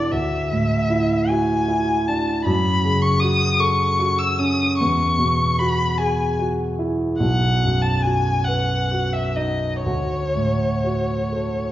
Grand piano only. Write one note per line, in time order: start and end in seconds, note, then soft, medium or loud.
0.00 0.14 B2 soft
0.00 0.12 D4 soft
0.00 0.13 E4 soft
0.00 0.13 F#4 soft
0.12 2.43 D2 soft
0.51 1.14 A2 soft
0.90 1.53 E4 soft
1.30 1.93 F#4 soft
1.68 2.31 E4 soft
2.08 2.47 D4 soft
2.46 4.75 F#2 medium
2.83 3.45 C#3 soft
3.22 3.85 F#4 soft
3.60 4.24 A4 soft
3.99 4.63 F#4 soft
4.39 4.79 C#4 soft
4.81 7.18 E2 soft
5.18 5.82 B2 soft
5.59 6.22 F#4 soft
5.99 6.63 G#4 soft
6.39 7.05 F#4 soft
6.79 7.21 E4 soft
7.20 9.82 B1 medium
7.64 8.31 F#2 soft
8.04 8.74 F#4 soft
8.48 9.19 B4 soft
8.91 9.66 F#4 soft
9.36 9.86 D#4 soft
9.86 11.72 D2 soft
10.35 11.14 A2 soft
10.84 11.62 F#4 soft
11.32 11.72 A4 soft